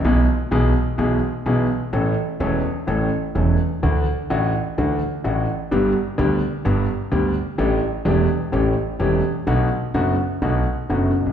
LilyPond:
<<
  \new Staff \with { instrumentName = "Grand piano" } { \clef bass \time 4/4 \key a \mixolydian \tempo 4 = 127 <b,, b, e gis b gis'>8 r8 <b,, b, e gis b gis'>8 r8 <b,, b, e gis b gis'>8 r8 <b,, b, e gis b gis'>8 r8 | <a,, a, e a cis' a'>8 r8 <e,, e, e a cis' a'>8 r8 <a,, a, e a cis' a'>8 r8 <e,, e, e a cis' a'>8 r8 | <d, d e a d' fis'>8 r8 <a,, a, e a d' fis'>8 r8 <d, d e a d' fis'>8 r8 <a,, a, e a d' fis'>8 r8 | <g,, g, d g b g'>8 r8 <d, d g b g'>8 r8 <g,, g, d g b g'>8 r8 <d, d g b g'>8 r8 |
<a,, a, e a d' g'>8 r8 <e,, e, e a d' g'>8 r8 <a,, a, e a cis' g'>8 r8 <e,, e, e a cis' g'>8 r8 | <b,, b, d a b fis'>8 r8 <fis,, fis, d a b fis'>8 r8 <b,, b, d a b fis'>8 r8 <fis,, fis, d a b fis'>8 r32 b,,32 c,32 r32 | }
  \new Staff \with { instrumentName = "Upright bass" } { \clef bass \time 4/4 \key a \mixolydian b,,16. r8 r32 b,,16. r8 r32 b,,16. r8 r32 b,,16. r8 r32 | a,,16. r8 r32 e,,16. r8 r32 a,,16. r8 r32 e,,16. r8 r32 | d,16. r8 r32 a,,16. r8 r32 d,16. r8 r32 a,,16. r8 r32 | g,,16. r8 r32 d,16. r8 r32 g,,16. r8 r32 d,16. r8 r32 |
a,,16. r8 r32 e,,16. r8 r32 a,,16. r8 r32 e,,16. r8 r32 | b,,16. r8 r32 fis,,16. r8 r32 b,,16. r8 r32 fis,,16. r16 b,,32 c,32 r32 | }
>>